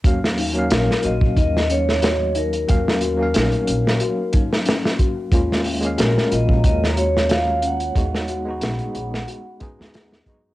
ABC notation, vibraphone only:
X:1
M:4/4
L:1/8
Q:"Swing 16ths" 1/4=91
K:Ebm
V:1 name="Vibraphone"
z2 B e e d z B- | B4- B z3 | z2 B e e d f g- | g4- g z3 |]